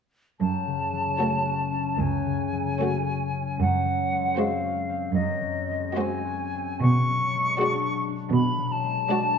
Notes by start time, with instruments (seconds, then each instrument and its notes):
0.40 harp F#2, cello section F#2, flute A5
0.67 harp C#3
0.93 harp F#3
1.19 viola section A3, harp C#4, violin section F#4 C#5
1.46 harp F#4
1.72 harp C#4
1.99 cello section C#2, harp F#2, flute G#5
2.26 harp C#3
2.53 harp F#3
2.79 viola section A3, harp C#4, violin section F#4 C#5
3.06 harp F#4
3.33 harp C#4
3.59 harp F#2, cello section F#2, flute F#5
3.85 harp F#3
4.12 harp G#3
4.37 viola section G#3, harp C4, violin section F#4 C5, flute F5
4.63 harp F#4
4.89 harp C4
5.13 cello section F#2, harp F#2, flute D#5
5.41 harp F#3
5.69 harp G#3
5.96 viola section G#3, harp C4, violin section F#4 C5, flute G#5
6.25 harp F#4
6.55 harp C4
6.81 cello section B2, harp B2, flute C#6
7.09 harp F#3
7.35 harp G#3
7.59 viola section G#3, harp D4, violin section F#4 D5
7.84 harp F#4
8.08 harp D4
8.32 cello section B2, harp B2, flute B5
8.58 harp F#3
8.71 flute A5
8.83 harp G#3
9.09 viola section G#3, harp D4, violin section F#4 D5